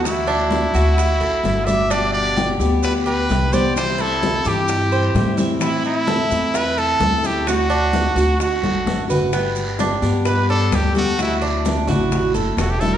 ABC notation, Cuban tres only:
X:1
M:4/4
L:1/8
Q:1/4=129
K:G
V:1 name="Cuban tres"
F D2 F2 A2 d | D2 G2 d G2 c | G E2 G2 c2 e | E2 A2 e A2 A |
F D2 F2 A2 B | B,2 D2 B D2 A | F D2 F2 A2 e |]